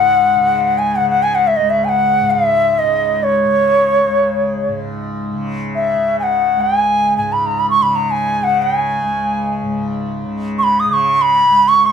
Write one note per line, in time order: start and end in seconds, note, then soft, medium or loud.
0.00 1.58 C#2 medium
0.00 2.20 G#2 medium
0.00 0.36 C#3 soft
0.00 0.80 F#5 medium
0.36 0.97 C#3 soft
0.78 0.97 G#5 medium
0.96 2.82 C#3 medium
0.96 1.08 F#5 medium
1.10 1.24 F#5 medium
1.23 1.36 G#5 medium
1.35 1.49 F#5 medium
1.47 1.58 E5 medium
1.56 4.05 C#2 medium
1.56 1.71 D#5 medium
1.70 1.86 E5 medium
1.85 1.90 G#5 medium
1.89 2.32 F#5 medium
2.21 4.68 G#2 medium
2.31 2.80 E5 medium
2.79 3.44 C#3 soft
2.79 3.25 D#5 medium
3.23 4.82 C#5 medium
3.44 5.31 C#3 soft
4.05 6.54 C#2 soft
4.68 7.17 G#2 medium
5.31 5.94 C#3 medium
5.75 6.17 E5 medium
5.94 7.80 C#3 soft
6.20 6.63 F#5 medium
6.20 6.24 G#5 medium
6.54 9.00 C#2 medium
6.61 7.17 G#5 medium
7.17 9.62 G#2 soft
7.17 7.34 G#5 medium
7.33 7.47 B5 medium
7.46 7.61 A#5 medium
7.59 7.70 B5 medium
7.70 7.84 C#6 medium
7.80 8.40 C#3 soft
7.80 7.97 B5 medium
7.95 8.12 A#5 medium
8.11 8.45 G#5 medium
8.40 10.23 C#3 medium
8.40 8.63 F#5 medium
8.62 9.87 G#5 medium
9.01 11.48 C#2 medium
9.62 11.92 G#2 soft
10.23 10.86 C#3 medium
10.59 10.65 C#6 medium
10.63 10.81 B5 medium
10.80 10.89 D#6 medium
10.86 11.92 C#3 medium
10.86 10.94 D#6 medium
10.93 11.23 C#6 medium
11.22 11.70 B5 loud
11.48 11.92 C#2 soft
11.68 11.88 C#6 medium
11.86 11.92 B5 medium